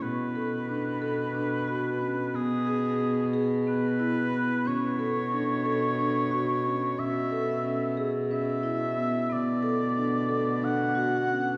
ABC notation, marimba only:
X:1
M:7/8
L:1/8
Q:1/4=90
K:Bdor
V:1 name="Marimba"
B, A D A D F C | B, G B, G B, E B, | C A D A D F C | C A C G C E B, |
B, A D A D F C |]